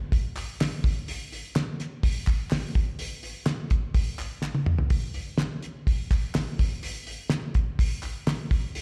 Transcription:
0.12 kick loud
0.12 hi-hat pedal medium
0.12 open hi-hat loud
0.36 clap medium
0.36 hi-hat pedal medium
0.36 open hi-hat medium
0.61 snare loud
0.61 clap medium
0.61 hi-hat pedal medium
0.61 open hi-hat loud
0.84 kick loud
0.84 hi-hat pedal medium
0.84 open hi-hat medium
1.08 hi-hat pedal medium
1.08 open hi-hat loud
1.32 hi-hat pedal medium
1.32 open hi-hat medium
1.56 snare loud
1.56 clap medium
1.56 hi-hat pedal medium
1.56 open hi-hat loud
1.80 snare soft
1.80 hi-hat pedal medium
1.80 open hi-hat medium
2.03 kick loud
2.03 hi-hat pedal medium
2.03 open hi-hat loud
2.27 kick medium
2.27 clap medium
2.27 hi-hat pedal medium
2.27 open hi-hat medium
2.51 snare loud
2.51 clap medium
2.51 hi-hat pedal medium
2.51 open hi-hat medium
2.75 kick medium
2.75 hi-hat pedal medium
2.75 open hi-hat medium
2.99 hi-hat pedal medium
2.99 open hi-hat loud
3.23 hi-hat pedal medium
3.23 open hi-hat medium
3.46 snare loud
3.46 clap medium
3.46 hi-hat pedal medium
3.46 open hi-hat loud
3.70 kick medium
3.70 hi-hat pedal medium
3.70 open hi-hat medium
3.94 kick loud
3.94 hi-hat pedal medium
3.94 open hi-hat loud
4.18 clap medium
4.18 hi-hat pedal medium
4.18 open hi-hat medium
4.42 snare medium
4.42 clap medium
4.55 high tom medium
4.66 mid tom loud
4.78 floor tom medium
4.90 kick loud
4.90 hi-hat pedal medium
4.90 open hi-hat loud
5.14 hi-hat pedal medium
5.14 open hi-hat medium
5.38 snare loud
5.38 clap medium
5.38 hi-hat pedal medium
5.38 open hi-hat loud
5.62 hi-hat pedal medium
5.62 open hi-hat medium
5.87 kick loud
5.87 hi-hat pedal medium
5.87 open hi-hat loud
6.10 kick medium
6.10 clap medium
6.10 hi-hat pedal medium
6.10 open hi-hat medium
6.35 snare loud
6.35 clap medium
6.35 hi-hat pedal medium
6.35 open hi-hat medium
6.59 kick medium
6.59 hi-hat pedal medium
6.59 open hi-hat medium
6.83 hi-hat pedal medium
6.83 open hi-hat loud
7.07 hi-hat pedal medium
7.07 open hi-hat medium
7.30 snare loud
7.30 clap medium
7.30 hi-hat pedal medium
7.30 open hi-hat loud
7.54 kick medium
7.54 hi-hat pedal medium
7.54 open hi-hat medium
7.79 kick loud
7.79 hi-hat pedal medium
7.79 open hi-hat loud
8.03 clap medium
8.03 hi-hat pedal medium
8.03 open hi-hat medium
8.27 snare loud
8.27 clap medium
8.27 hi-hat pedal medium
8.27 open hi-hat medium
8.51 kick loud
8.51 hi-hat pedal medium
8.51 open hi-hat medium
8.75 hi-hat pedal medium
8.75 open hi-hat loud

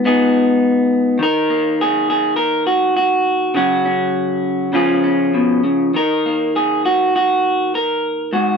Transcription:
0.00 1.17 G#2 medium
0.05 1.17 B3 medium
0.05 1.17 D#4 medium
0.05 1.18 G#4 medium
1.19 3.51 D#3 medium
1.19 1.79 A#4 loud
1.50 3.52 A#3 soft
1.81 2.09 G#4 medium
2.10 2.36 G#4 medium
2.36 2.66 A#4 medium
2.67 2.95 F#4 medium
2.97 3.55 F#4 medium
3.55 4.70 C#3 medium
3.55 4.71 F#3 medium
3.55 3.84 C#4 medium
3.55 4.75 F#4 medium
3.85 4.71 C#4 soft
4.73 5.34 C#3 medium
4.73 5.91 F3 medium
4.73 5.03 C#4 medium
4.73 5.92 F4 soft
4.73 5.92 G#4 medium
5.04 5.91 C#4 soft
5.34 5.64 B2 soft
5.64 5.94 C#3 medium
5.94 8.30 D#3 medium
5.94 6.56 A#4 medium
6.26 8.30 A#3 soft
6.56 6.85 G#4 medium
6.85 7.15 F#4 medium
7.16 7.75 F#4 medium
7.75 8.33 A#4 medium
8.33 8.57 G#2 medium
8.33 8.57 F#4 medium

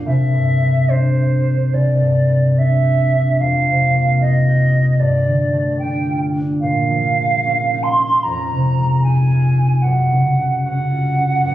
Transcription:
0.00 0.87 D4 soft
0.00 0.10 F4 soft
0.00 1.15 G4 soft
0.06 1.72 C2 soft
0.06 0.91 E5 medium
0.33 1.99 G2 soft
0.61 2.28 G3 soft
0.88 1.43 D4 soft
0.88 1.75 C5 medium
1.16 2.82 G4 soft
1.44 2.55 D4 soft
1.73 3.44 C2 soft
1.73 2.60 D5 medium
2.00 3.43 G2 soft
2.29 6.19 G3 soft
2.56 3.12 D4 soft
2.56 3.39 E5 medium
2.83 4.47 G4 soft
3.14 3.44 D4 soft
3.39 5.04 F2 soft
3.39 4.19 F5 medium
3.68 5.04 C3 soft
3.93 7.83 A#3 soft
4.21 4.72 D#4 soft
4.21 5.01 D#5 medium
4.48 6.65 G4 soft
4.74 5.04 D#4 soft
4.99 6.65 G2 soft
4.99 5.78 D5 medium
5.26 6.65 D3 soft
5.53 6.65 A3 soft
5.79 6.34 D4 soft
5.79 6.19 G5 medium
6.08 9.30 F4 soft
6.36 6.66 D4 soft
6.61 8.28 A#2 soft
6.61 7.85 F5 medium
6.90 10.80 F3 soft
7.18 8.77 G#3 soft
7.46 7.97 C#4 soft
7.72 9.04 D#4 soft
7.83 8.25 C6 medium
7.99 8.28 C#4 soft
8.23 9.87 F2 soft
8.23 9.03 A#5 medium
8.52 9.87 C3 soft
8.78 10.37 G#3 soft
9.03 9.56 D#4 soft
9.03 9.83 G#5 medium
9.31 10.89 F4 soft
9.57 9.87 D#4 soft
9.82 11.44 F#2 soft
9.82 10.63 F#5 medium
10.12 11.55 C#3 soft
10.38 11.55 G#3 soft
10.63 11.16 C#4 soft
10.63 11.55 F#5 medium
10.90 11.55 F4 soft
11.17 11.55 C#4 soft
11.45 11.55 F#2 soft

